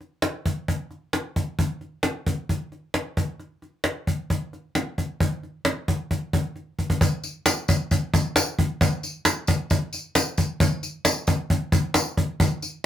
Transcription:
0.01 cajon slap soft
0.22 cajon slap loud
0.46 cajon bass medium
0.68 cajon bass medium
0.91 cajon slap soft
1.13 cajon slap medium
1.36 cajon bass medium
1.59 cajon bass medium
1.81 cajon slap soft
2.03 cajon slap medium
2.27 cajon bass medium
2.49 cajon bass medium
2.72 cajon slap soft
2.94 cajon slap medium
3.17 cajon bass medium
3.40 cajon slap soft
3.62 cajon slap soft
3.84 cajon slap medium
4.07 cajon bass medium
4.30 cajon bass medium
4.53 cajon slap soft
4.75 cajon slap medium
4.98 cajon bass medium
5.20 cajon bass loud
5.43 cajon slap soft
5.65 cajon slap loud
5.88 cajon bass medium
6.11 cajon bass medium
6.33 cajon bass loud
6.56 cajon slap medium
6.79 cajon bass medium
6.90 cajon bass medium
7.01 cajon bass loud
7.01 tambourine soft
7.24 cajon slap soft
7.24 tambourine soft
7.46 cajon slap loud
7.46 tambourine medium
7.68 cajon bass loud
7.68 tambourine medium
7.91 cajon bass medium
7.91 tambourine soft
8.14 cajon bass loud
8.14 tambourine soft
8.36 cajon slap loud
8.36 tambourine loud
8.59 cajon bass medium
8.81 cajon bass loud
8.81 tambourine medium
9.03 cajon slap soft
9.03 tambourine soft
9.25 cajon slap loud
9.25 tambourine medium
9.47 cajon bass medium
9.47 tambourine medium
9.70 cajon bass medium
9.70 tambourine soft
9.93 cajon slap soft
9.93 tambourine soft
10.15 cajon slap loud
10.15 tambourine loud
10.37 cajon bass medium
10.37 tambourine soft
10.60 cajon bass loud
10.60 tambourine medium
10.83 cajon slap soft
10.83 tambourine soft
11.05 cajon slap loud
11.05 tambourine loud
11.27 cajon bass medium
11.27 tambourine medium
11.50 cajon bass medium
11.72 cajon bass loud
11.72 tambourine soft
11.94 cajon slap loud
11.94 tambourine loud
12.17 cajon bass medium
12.40 cajon bass loud
12.40 tambourine soft
12.62 cajon slap soft
12.62 tambourine soft

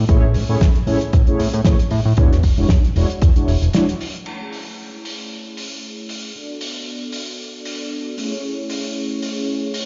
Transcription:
0.08 0.36 A1 loud
0.08 0.25 A3 medium
0.08 0.25 C#4 medium
0.08 0.25 E4 medium
0.08 0.25 G#4 medium
0.08 0.25 C#5 loud
0.08 kick loud
0.08 closed hi-hat medium
0.34 0.44 A2 medium
0.34 open hi-hat medium
0.49 0.57 A2 loud
0.49 0.58 A3 medium
0.49 0.58 C#4 medium
0.49 0.58 E4 medium
0.49 0.58 G#4 medium
0.49 0.58 C#5 medium
0.61 0.70 A1 medium
0.61 kick loud
0.61 snare loud
0.61 closed hi-hat medium
0.75 closed hi-hat medium
0.87 0.96 A2 medium
0.87 0.97 A3 medium
0.87 0.97 C#4 medium
0.87 0.98 E4 medium
0.87 0.98 G#4 medium
0.87 0.98 C#5 medium
0.87 open hi-hat medium
1.01 closed hi-hat medium
1.13 1.23 A1 medium
1.13 kick loud
1.13 closed hi-hat medium
1.27 1.41 A3 medium
1.27 1.41 C#4 medium
1.27 1.41 E4 medium
1.27 1.42 G#4 medium
1.27 1.42 C#5 medium
1.27 closed hi-hat soft
1.39 1.49 A2 medium
1.39 open hi-hat loud
1.54 1.61 A2 medium
1.54 closed hi-hat medium
1.65 1.75 A1 loud
1.65 1.76 A3 medium
1.65 1.76 C#4 medium
1.65 1.76 E4 medium
1.65 1.76 G#4 medium
1.65 1.76 C#5 medium
1.65 kick loud
1.65 snare loud
1.65 closed hi-hat medium
1.79 closed hi-hat medium
1.91 2.01 A2 medium
1.91 open hi-hat medium
2.05 2.13 A2 medium
2.17 2.45 E2 loud
2.17 2.34 G#3 medium
2.17 2.34 D4 medium
2.17 2.34 E4 medium
2.17 2.34 F#4 medium
2.17 2.34 C#5 loud
2.17 kick loud
2.17 closed hi-hat medium
2.32 snare soft
2.32 closed hi-hat medium
2.43 2.53 E1 medium
2.43 kick medium
2.43 open hi-hat medium
2.57 2.66 E1 loud
2.57 2.66 G#3 medium
2.57 2.66 D4 medium
2.57 2.66 E4 medium
2.57 2.67 F#4 medium
2.57 2.67 C#5 medium
2.69 2.79 E2 medium
2.69 kick loud
2.69 snare loud
2.69 closed hi-hat medium
2.85 closed hi-hat medium
2.95 3.05 E1 loud
2.95 3.06 G#3 medium
2.95 3.06 D4 medium
2.95 3.06 E4 medium
2.95 3.06 F#4 medium
2.95 3.07 C#5 medium
2.95 open hi-hat medium
3.10 closed hi-hat medium
3.22 3.31 E2 medium
3.22 kick loud
3.22 closed hi-hat medium
3.36 3.50 G#3 medium
3.36 3.50 D4 medium
3.36 3.50 E4 medium
3.36 3.50 F#4 medium
3.36 3.50 C#5 medium
3.36 closed hi-hat medium
3.48 3.57 E1 medium
3.48 open hi-hat loud
3.62 3.70 E1 medium
3.62 closed hi-hat medium
3.73 3.84 G#3 medium
3.73 3.84 D4 medium
3.73 3.84 E4 medium
3.73 3.85 F#4 medium
3.73 3.85 C#5 medium
3.73 snare loud
3.73 closed hi-hat medium
3.89 closed hi-hat medium
4.01 open hi-hat loud
4.14 closed hi-hat medium
4.25 6.32 A3 medium
4.25 6.32 C#4 medium
4.25 6.32 E4 medium
4.25 6.32 G#4 medium
4.25 6.33 C#5 medium
4.25 crash medium
4.53 open hi-hat medium
5.05 open hi-hat medium
5.57 open hi-hat medium
6.09 open hi-hat medium
6.35 8.15 B3 medium
6.35 8.15 D4 medium
6.35 8.15 F#4 medium
6.35 8.15 A4 medium
6.35 8.16 D5 medium
6.61 open hi-hat loud
7.12 open hi-hat medium
7.65 open hi-hat loud
8.17 9.86 A3 medium
8.17 9.86 C#4 medium
8.17 9.86 E4 medium
8.17 9.86 G#4 medium
8.17 9.86 C#5 medium
8.17 open hi-hat medium
8.70 open hi-hat loud
9.22 open hi-hat medium
9.74 open hi-hat loud

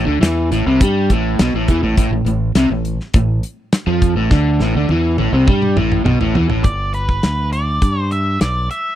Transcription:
0.06 0.21 D2 medium
0.06 0.21 D3 medium
0.21 0.50 E2 medium
0.21 0.50 E3 loud
0.21 snare loud
0.21 closed hi-hat loud
0.51 0.65 A1 medium
0.51 0.66 A2 loud
0.51 closed hi-hat medium
0.66 0.80 C2 loud
0.66 0.81 C3 loud
0.81 1.08 G2 loud
0.81 1.10 G3 loud
0.81 kick loud
0.81 closed hi-hat loud
1.10 1.37 A1 medium
1.10 1.39 A2 loud
1.10 kick medium
1.10 closed hi-hat medium
1.39 1.53 B1 loud
1.39 1.54 B2 loud
1.39 snare loud
1.39 closed hi-hat loud
1.54 1.68 A1 medium
1.54 1.68 A2 loud
1.68 1.82 E2 loud
1.68 1.83 E3 loud
1.68 kick medium
1.68 closed hi-hat medium
1.83 1.97 A1 medium
1.83 1.97 A2 medium
1.97 2.10 A1 loud
1.97 2.12 A2 loud
1.97 kick loud
1.97 closed hi-hat medium
2.11 2.24 A1 medium
2.11 2.26 A2 medium
2.25 2.53 A1 medium
2.25 2.50 A2 medium
2.25 closed hi-hat medium
2.55 2.69 C2 medium
2.55 2.70 C3 medium
2.55 snare loud
2.55 closed hi-hat medium
2.70 2.98 A1 medium
2.70 2.95 A2 medium
2.85 closed hi-hat medium
3.00 snare soft
3.14 3.41 A1 medium
3.14 3.39 A2 medium
3.14 kick loud
3.14 closed hi-hat medium
3.43 closed hi-hat medium
3.73 snare loud
3.73 closed hi-hat loud
3.87 4.14 F2 medium
3.87 4.16 F3 loud
4.02 kick medium
4.02 closed hi-hat medium
4.15 4.30 A1 medium
4.15 4.30 A2 medium
4.31 4.58 D2 medium
4.31 4.60 D3 loud
4.31 kick loud
4.31 snare medium
4.60 4.74 A1 loud
4.60 4.75 A2 loud
4.60 snare medium
4.75 4.89 D2 loud
4.75 4.89 D3 medium
4.89 5.17 E2 medium
4.89 5.18 E3 loud
4.89 high tom medium
5.18 5.32 A1 loud
5.18 5.32 A2 loud
5.18 high tom medium
5.32 5.46 C2 loud
5.32 5.47 C3 loud
5.47 5.75 G2 loud
5.47 5.76 G3 loud
5.47 kick loud
5.47 mid tom medium
5.62 mid tom medium
5.76 6.04 A1 medium
5.76 6.04 A2 loud
5.76 mid tom medium
5.92 mid tom medium
6.05 6.20 B1 loud
6.05 6.19 B2 loud
6.05 mid tom loud
6.21 6.35 A1 medium
6.21 6.35 A2 loud
6.21 floor tom medium
6.35 6.49 E2 loud
6.35 6.49 E3 loud
6.35 floor tom loud
6.50 6.64 A1 medium
6.50 6.64 A2 medium
6.50 floor tom medium
6.64 7.19 G1 medium
6.64 6.94 D5 medium
6.64 kick loud
6.64 closed hi-hat medium
6.94 7.49 B4 medium
6.94 closed hi-hat medium
7.09 kick medium
7.23 7.78 D2 medium
7.23 snare loud
7.23 closed hi-hat medium
7.53 8.00 D5 medium
7.53 closed hi-hat medium
7.82 8.37 G2 medium
7.82 kick loud
7.82 closed hi-hat medium
8.00 8.12 C5 medium
8.11 8.41 E5 medium
8.11 closed hi-hat medium
8.41 8.68 B1 medium
8.41 8.68 D5 medium
8.41 snare loud
8.41 closed hi-hat medium
8.71 8.95 E5 medium
8.71 closed hi-hat medium

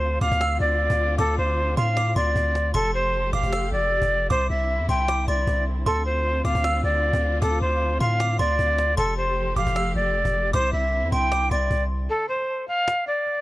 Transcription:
0.00 0.19 D2 loud
0.00 2.72 D3 medium
0.00 2.72 C4 medium
0.00 2.71 F4 medium
0.00 0.19 C5 medium
0.00 0.18 C6 loud
0.00 cajon slap soft
0.21 0.31 D2 loud
0.21 0.58 F5 loud
0.21 0.40 D6 medium
0.21 cajon bass loud
0.32 0.59 D2 loud
0.32 cajon bass loud
0.41 1.15 E6 medium
0.41 cajon slap loud
0.60 0.89 D2 loud
0.60 1.15 D5 medium
0.71 cajon slap soft
0.80 cajon slap soft
0.90 1.18 D2 loud
0.90 cajon bass loud
1.18 1.37 D2 loud
1.18 1.35 A4 loud
1.18 1.73 D6 medium
1.18 cajon bass loud
1.38 1.76 D2 loud
1.38 1.75 C5 medium
1.38 cajon slap soft
1.58 cajon slap soft
1.77 2.15 A2 loud
1.77 2.14 F5 medium
1.77 1.96 C6 medium
1.77 cajon bass loud
1.97 2.15 D6 medium
1.97 cajon slap loud
2.16 2.35 D2 loud
2.16 2.71 D5 medium
2.16 2.71 C6 medium
2.16 cajon bass loud
2.36 2.73 D2 loud
2.36 cajon bass medium
2.55 cajon slap loud
2.74 3.31 F1 loud
2.74 4.29 F3 medium
2.74 4.29 A3 medium
2.74 4.29 G4 medium
2.74 2.91 A4 loud
2.74 3.29 C6 loud
2.74 cajon bass loud
2.94 3.31 C5 medium
3.13 cajon slap soft
3.33 3.43 F1 loud
3.33 3.70 F5 medium
3.33 3.52 D6 medium
3.33 cajon bass loud
3.43 3.71 F1 loud
3.43 cajon bass loud
3.52 4.26 E6 medium
3.52 cajon slap loud
3.72 4.01 F1 loud
3.72 4.27 D5 medium
3.82 cajon slap soft
3.92 cajon slap soft
4.02 4.29 F1 loud
4.02 cajon bass loud
4.30 4.49 C2 loud
4.30 8.94 D3 medium
4.30 8.94 C4 medium
4.30 5.85 E4 medium
4.30 4.47 C5 loud
4.30 4.85 D6 loud
4.30 cajon bass loud
4.50 4.81 C2 loud
4.50 4.86 E5 medium
4.50 cajon slap soft
4.69 cajon slap soft
4.80 4.88 E2 loud
4.89 5.26 C2 loud
4.89 5.26 G5 medium
4.89 5.07 C6 medium
4.89 cajon bass loud
5.08 5.27 D6 medium
5.08 cajon slap loud
5.28 5.46 C2 loud
5.28 5.64 D5 medium
5.28 5.83 C6 medium
5.28 cajon bass medium
5.28 cajon slap medium
5.41 cajon slap soft
5.47 5.85 C2 loud
5.47 cajon bass medium
5.86 6.42 D2 loud
5.86 8.95 F4 medium
5.86 6.03 A4 loud
5.86 6.41 C6 loud
5.86 cajon bass loud
6.06 6.42 C5 medium
6.06 cajon slap medium
6.25 cajon slap soft
6.45 6.54 D2 loud
6.45 6.81 F5 loud
6.45 6.63 D6 medium
6.45 cajon bass loud
6.55 6.82 D2 loud
6.55 cajon bass loud
6.64 7.38 E6 medium
6.64 cajon slap loud
6.84 7.12 D2 loud
6.84 7.39 D5 medium
6.94 cajon slap soft
7.03 cajon slap soft
7.13 7.41 D2 loud
7.13 cajon bass loud
7.42 7.61 D2 loud
7.42 7.59 A4 loud
7.42 7.97 D6 medium
7.42 cajon bass loud
7.61 7.99 D2 loud
7.61 7.98 C5 medium
7.81 cajon slap soft
8.00 8.38 A2 loud
8.00 8.37 F5 medium
8.00 8.19 C6 medium
8.00 cajon bass loud
8.20 8.39 D6 medium
8.20 cajon slap loud
8.39 8.58 D2 loud
8.39 8.94 D5 medium
8.39 8.94 C6 medium
8.39 cajon bass medium
8.59 8.96 D2 loud
8.59 cajon bass medium
8.78 cajon slap loud
8.97 9.54 F1 loud
8.97 10.52 F3 medium
8.97 10.52 A3 medium
8.97 10.52 G4 medium
8.97 9.14 A4 loud
8.97 9.53 C6 loud
8.97 cajon bass loud
9.17 9.54 C5 medium
9.17 cajon slap soft
9.37 cajon slap soft
9.56 9.66 F1 loud
9.56 9.93 F5 medium
9.56 9.75 D6 medium
9.56 cajon bass loud
9.67 9.94 F1 loud
9.67 cajon bass loud
9.76 10.50 E6 medium
9.76 cajon slap loud
9.95 10.24 F1 loud
9.95 10.50 D5 medium
10.06 cajon slap soft
10.15 cajon slap soft
10.25 10.53 F1 loud
10.25 cajon bass loud
10.53 10.72 C2 loud
10.53 12.08 D3 medium
10.53 12.08 C4 medium
10.53 12.08 E4 medium
10.53 10.70 C5 loud
10.53 11.08 D6 loud
10.53 cajon bass loud
10.73 11.04 C2 loud
10.73 11.10 E5 medium
10.93 cajon slap soft
11.03 11.12 E2 loud
11.12 11.50 C2 loud
11.12 11.49 G5 medium
11.12 11.31 C6 medium
11.12 cajon bass loud
11.32 11.50 D6 medium
11.32 cajon slap loud
11.51 11.70 C2 loud
11.51 11.83 D5 medium
11.51 12.06 C6 medium
11.51 cajon bass medium
11.51 cajon slap medium
11.64 cajon slap soft
11.71 12.08 C2 loud
11.71 cajon bass medium
12.10 12.26 A4 loud
12.10 cajon slap soft
12.29 12.66 C5 medium
12.29 cajon slap soft
12.36 cajon slap soft
12.42 cajon slap soft
12.68 13.05 F5 medium
12.68 cajon slap soft
12.88 cajon slap loud
13.07 13.41 D5 medium
13.07 cajon slap soft
13.27 cajon slap soft
13.37 cajon slap soft

